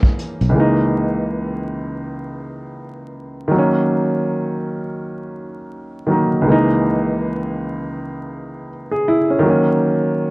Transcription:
0, 0, Header, 1, 4, 480
1, 0, Start_track
1, 0, Tempo, 740741
1, 353, Time_signature, 4, 2, 24, 8
1, 6677, End_track
2, 0, Start_track
2, 0, Title_t, "Upright piano"
2, 0, Program_c, 0, 0
2, 0, Control_c, 0, 64, 127
2, 0, Note_on_c, 0, 52, 57
2, 0, Note_on_c, 0, 58, 54
2, 0, Note_on_c, 0, 61, 58
2, 0, Note_on_c, 0, 63, 66
2, 0, Note_on_c, 0, 68, 73
2, 81, Note_off_c, 0, 68, 0
2, 87, Note_off_c, 0, 52, 0
2, 89, Note_off_c, 0, 58, 0
2, 90, Note_off_c, 0, 63, 0
2, 92, Note_off_c, 0, 61, 0
2, 321, Note_on_c, 0, 37, 67
2, 339, Note_on_c, 0, 52, 55
2, 354, Note_on_c, 0, 56, 57
2, 361, Control_c, 0, 64, 0
2, 372, Note_on_c, 0, 58, 55
2, 388, Note_on_c, 0, 63, 69
2, 477, Control_c, 0, 64, 127
2, 2231, Note_off_c, 0, 37, 0
2, 2240, Note_off_c, 0, 52, 0
2, 2247, Note_off_c, 0, 56, 0
2, 2252, Note_on_c, 0, 51, 66
2, 2256, Note_off_c, 0, 58, 0
2, 2264, Note_off_c, 0, 63, 0
2, 2275, Note_on_c, 0, 54, 64
2, 2281, Control_c, 0, 64, 0
2, 2299, Note_on_c, 0, 58, 56
2, 2320, Note_on_c, 0, 61, 71
2, 2398, Control_c, 0, 64, 127
2, 3916, Note_off_c, 0, 51, 0
2, 3928, Note_off_c, 0, 54, 0
2, 3930, Note_on_c, 0, 51, 58
2, 3940, Note_off_c, 0, 58, 0
2, 3940, Note_on_c, 0, 54, 48
2, 3950, Note_off_c, 0, 61, 0
2, 3951, Note_on_c, 0, 58, 45
2, 3962, Note_on_c, 0, 63, 55
2, 4158, Note_on_c, 0, 37, 61
2, 4164, Note_off_c, 0, 51, 0
2, 4173, Note_on_c, 0, 51, 47
2, 4186, Note_off_c, 0, 54, 0
2, 4191, Note_on_c, 0, 56, 60
2, 4192, Note_off_c, 0, 58, 0
2, 4197, Note_off_c, 0, 63, 0
2, 4201, Control_c, 0, 64, 0
2, 4207, Note_on_c, 0, 58, 61
2, 4216, Note_on_c, 0, 52, 61
2, 4224, Note_on_c, 0, 63, 85
2, 4235, Note_off_c, 0, 51, 0
2, 4318, Control_c, 0, 64, 127
2, 5622, Note_off_c, 0, 63, 0
2, 5777, Note_on_c, 0, 68, 61
2, 5866, Note_off_c, 0, 68, 0
2, 5885, Note_on_c, 0, 64, 72
2, 6019, Note_off_c, 0, 64, 0
2, 6028, Note_on_c, 0, 61, 57
2, 6069, Note_off_c, 0, 37, 0
2, 6085, Note_on_c, 0, 51, 73
2, 6086, Note_off_c, 0, 56, 0
2, 6094, Note_off_c, 0, 58, 0
2, 6098, Note_off_c, 0, 52, 0
2, 6109, Note_on_c, 0, 54, 58
2, 6120, Control_c, 0, 64, 0
2, 6129, Note_on_c, 0, 58, 56
2, 6143, Note_off_c, 0, 61, 0
2, 6152, Note_on_c, 0, 61, 68
2, 6227, Control_c, 0, 64, 127
2, 6677, Note_off_c, 0, 51, 0
2, 6677, Note_off_c, 0, 54, 0
2, 6677, Note_off_c, 0, 58, 0
2, 6677, Note_off_c, 0, 61, 0
2, 6677, End_track
3, 0, Start_track
3, 0, Title_t, "Fingered electric bass"
3, 0, Program_c, 1, 33
3, 266, Note_on_c, 1, 35, 88
3, 345, Note_off_c, 1, 35, 0
3, 6677, End_track
4, 0, Start_track
4, 0, Title_t, "Drums"
4, 18, Note_on_c, 9, 36, 84
4, 83, Note_off_c, 9, 36, 0
4, 121, Note_on_c, 9, 42, 57
4, 186, Note_off_c, 9, 42, 0
4, 265, Note_on_c, 9, 42, 35
4, 329, Note_off_c, 9, 42, 0
4, 6677, End_track
0, 0, End_of_file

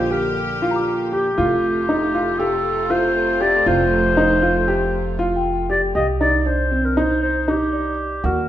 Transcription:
0, 0, Header, 1, 6, 480
1, 0, Start_track
1, 0, Key_signature, -3, "minor"
1, 0, Tempo, 508475
1, 1302, Time_signature, 9, 3, 24, 8
1, 8011, End_track
2, 0, Start_track
2, 0, Title_t, "Celesta"
2, 0, Program_c, 0, 8
2, 672, Note_on_c, 0, 82, 58
2, 715, Note_on_c, 0, 86, 46
2, 762, Note_on_c, 0, 89, 49
2, 1509, Note_off_c, 0, 82, 0
2, 1531, Note_off_c, 0, 86, 0
2, 1554, Note_off_c, 0, 89, 0
2, 5060, Note_on_c, 0, 79, 45
2, 5665, Note_on_c, 0, 77, 46
2, 5823, Note_off_c, 0, 79, 0
2, 7078, Note_off_c, 0, 77, 0
2, 7295, Note_on_c, 0, 74, 45
2, 7977, Note_off_c, 0, 74, 0
2, 8011, End_track
3, 0, Start_track
3, 0, Title_t, "Clarinet"
3, 0, Program_c, 1, 71
3, 0, Note_on_c, 1, 72, 76
3, 111, Note_on_c, 1, 70, 69
3, 125, Note_off_c, 1, 72, 0
3, 809, Note_off_c, 1, 70, 0
3, 1061, Note_on_c, 1, 67, 81
3, 2259, Note_on_c, 1, 69, 89
3, 2274, Note_off_c, 1, 67, 0
3, 2741, Note_on_c, 1, 72, 88
3, 2755, Note_off_c, 1, 69, 0
3, 3224, Note_on_c, 1, 74, 92
3, 3239, Note_off_c, 1, 72, 0
3, 3471, Note_on_c, 1, 72, 99
3, 3485, Note_off_c, 1, 74, 0
3, 5145, Note_off_c, 1, 72, 0
3, 5386, Note_on_c, 1, 74, 81
3, 5492, Note_off_c, 1, 74, 0
3, 5624, Note_on_c, 1, 75, 88
3, 5731, Note_off_c, 1, 75, 0
3, 5864, Note_on_c, 1, 74, 95
3, 6029, Note_off_c, 1, 74, 0
3, 6029, Note_on_c, 1, 74, 55
3, 6102, Note_on_c, 1, 72, 81
3, 6116, Note_off_c, 1, 74, 0
3, 6466, Note_on_c, 1, 70, 72
3, 6481, Note_off_c, 1, 72, 0
3, 6583, Note_on_c, 1, 72, 79
3, 6597, Note_off_c, 1, 70, 0
3, 6816, Note_off_c, 1, 72, 0
3, 6821, Note_on_c, 1, 72, 77
3, 7071, Note_on_c, 1, 67, 80
3, 7086, Note_off_c, 1, 72, 0
3, 7790, Note_on_c, 1, 70, 75
3, 7804, Note_off_c, 1, 67, 0
3, 8011, Note_off_c, 1, 70, 0
3, 8011, End_track
4, 0, Start_track
4, 0, Title_t, "Grand piano"
4, 0, Program_c, 2, 0
4, 104, Note_on_c, 2, 67, 71
4, 532, Note_off_c, 2, 67, 0
4, 586, Note_on_c, 2, 65, 73
4, 1013, Note_off_c, 2, 65, 0
4, 1058, Note_on_c, 2, 67, 60
4, 1274, Note_off_c, 2, 67, 0
4, 1300, Note_on_c, 2, 65, 77
4, 1729, Note_off_c, 2, 65, 0
4, 1782, Note_on_c, 2, 63, 67
4, 1996, Note_off_c, 2, 63, 0
4, 2024, Note_on_c, 2, 65, 71
4, 2237, Note_off_c, 2, 65, 0
4, 2261, Note_on_c, 2, 67, 79
4, 2690, Note_off_c, 2, 67, 0
4, 2737, Note_on_c, 2, 65, 75
4, 3167, Note_off_c, 2, 65, 0
4, 3216, Note_on_c, 2, 67, 74
4, 3432, Note_off_c, 2, 67, 0
4, 3457, Note_on_c, 2, 65, 78
4, 3887, Note_off_c, 2, 65, 0
4, 3937, Note_on_c, 2, 63, 72
4, 4153, Note_off_c, 2, 63, 0
4, 4176, Note_on_c, 2, 65, 70
4, 4392, Note_off_c, 2, 65, 0
4, 4417, Note_on_c, 2, 67, 74
4, 4847, Note_off_c, 2, 67, 0
4, 4898, Note_on_c, 2, 65, 75
4, 5328, Note_off_c, 2, 65, 0
4, 5377, Note_on_c, 2, 67, 65
4, 5593, Note_off_c, 2, 67, 0
4, 5617, Note_on_c, 2, 67, 71
4, 5832, Note_off_c, 2, 67, 0
4, 5859, Note_on_c, 2, 63, 61
4, 6074, Note_off_c, 2, 63, 0
4, 6099, Note_on_c, 2, 62, 61
4, 6314, Note_off_c, 2, 62, 0
4, 6337, Note_on_c, 2, 60, 61
4, 6553, Note_off_c, 2, 60, 0
4, 6580, Note_on_c, 2, 63, 73
4, 7009, Note_off_c, 2, 63, 0
4, 7060, Note_on_c, 2, 63, 65
4, 7488, Note_off_c, 2, 63, 0
4, 7776, Note_on_c, 2, 66, 72
4, 7992, Note_off_c, 2, 66, 0
4, 8011, End_track
5, 0, Start_track
5, 0, Title_t, "String section"
5, 0, Program_c, 3, 48
5, 0, Note_on_c, 3, 50, 60
5, 0, Note_on_c, 3, 58, 62
5, 0, Note_on_c, 3, 67, 72
5, 1260, Note_off_c, 3, 50, 0
5, 1260, Note_off_c, 3, 58, 0
5, 1275, Note_off_c, 3, 67, 0
5, 1300, Note_on_c, 3, 57, 64
5, 1302, Note_on_c, 3, 48, 73
5, 1303, Note_on_c, 3, 65, 67
5, 5581, Note_off_c, 3, 48, 0
5, 5581, Note_off_c, 3, 57, 0
5, 5582, Note_off_c, 3, 65, 0
5, 8011, End_track
6, 0, Start_track
6, 0, Title_t, "Upright bass"
6, 0, Program_c, 4, 32
6, 0, Note_on_c, 4, 34, 78
6, 1265, Note_off_c, 4, 34, 0
6, 1306, Note_on_c, 4, 29, 71
6, 3425, Note_off_c, 4, 29, 0
6, 3457, Note_on_c, 4, 29, 78
6, 5580, Note_off_c, 4, 29, 0
6, 5619, Note_on_c, 4, 36, 61
6, 7741, Note_off_c, 4, 36, 0
6, 7777, Note_on_c, 4, 39, 72
6, 8011, Note_off_c, 4, 39, 0
6, 8011, End_track
0, 0, End_of_file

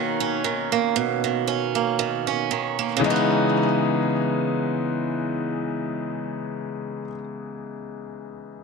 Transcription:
0, 0, Header, 1, 3, 480
1, 0, Start_track
1, 0, Tempo, 1034483
1, 1403, Time_signature, 4, 2, 24, 8
1, 4007, End_track
2, 0, Start_track
2, 0, Title_t, "Grand piano"
2, 0, Program_c, 0, 0
2, 0, Control_c, 0, 64, 127
2, 0, Note_on_c, 0, 51, 64
2, 0, Note_on_c, 0, 58, 54
2, 0, Note_on_c, 0, 61, 66
2, 0, Note_on_c, 0, 66, 76
2, 0, Note_on_c, 0, 73, 102
2, 901, Note_off_c, 0, 73, 0
2, 907, Note_off_c, 0, 66, 0
2, 1390, Note_on_c, 0, 49, 84
2, 1396, Note_on_c, 0, 52, 79
2, 1404, Note_on_c, 0, 56, 83
2, 1409, Control_c, 0, 64, 0
2, 1410, Note_off_c, 0, 51, 0
2, 1411, Note_off_c, 0, 58, 0
2, 1411, Note_on_c, 0, 59, 77
2, 1412, Note_off_c, 0, 61, 0
2, 1418, Note_on_c, 0, 63, 91
2, 1483, Control_c, 0, 64, 127
2, 3262, Note_off_c, 0, 49, 0
2, 3269, Note_off_c, 0, 52, 0
2, 3276, Note_off_c, 0, 56, 0
2, 3284, Note_off_c, 0, 59, 0
2, 3291, Note_off_c, 0, 63, 0
2, 4007, End_track
3, 0, Start_track
3, 0, Title_t, "Steel-string acoustic guitar"
3, 0, Program_c, 1, 25
3, 0, Note_on_c, 1, 47, 84
3, 0, Note_on_c, 1, 51, 76
3, 0, Note_on_c, 1, 58, 58
3, 0, Note_on_c, 1, 61, 70
3, 93, Note_off_c, 1, 61, 0
3, 94, Note_on_c, 1, 61, 68
3, 204, Note_off_c, 1, 51, 0
3, 206, Note_on_c, 1, 51, 65
3, 329, Note_off_c, 1, 58, 0
3, 334, Note_on_c, 1, 58, 67
3, 439, Note_off_c, 1, 47, 0
3, 445, Note_on_c, 1, 47, 85
3, 573, Note_off_c, 1, 51, 0
3, 575, Note_on_c, 1, 51, 61
3, 682, Note_off_c, 1, 61, 0
3, 684, Note_on_c, 1, 61, 73
3, 807, Note_off_c, 1, 58, 0
3, 812, Note_on_c, 1, 58, 61
3, 921, Note_off_c, 1, 51, 0
3, 923, Note_on_c, 1, 51, 74
3, 1052, Note_off_c, 1, 61, 0
3, 1054, Note_on_c, 1, 61, 69
3, 1162, Note_off_c, 1, 51, 0
3, 1164, Note_on_c, 1, 51, 65
3, 1288, Note_off_c, 1, 58, 0
3, 1293, Note_on_c, 1, 58, 63
3, 1374, Note_off_c, 1, 47, 0
3, 1376, Note_on_c, 1, 49, 85
3, 1410, Note_off_c, 1, 51, 0
3, 1411, Note_on_c, 1, 52, 83
3, 1438, Note_off_c, 1, 58, 0
3, 1439, Note_on_c, 1, 59, 86
3, 1464, Note_off_c, 1, 61, 0
3, 1466, Note_on_c, 1, 63, 86
3, 3267, Note_off_c, 1, 49, 0
3, 3302, Note_off_c, 1, 52, 0
3, 3330, Note_off_c, 1, 59, 0
3, 3357, Note_off_c, 1, 63, 0
3, 4007, End_track
0, 0, End_of_file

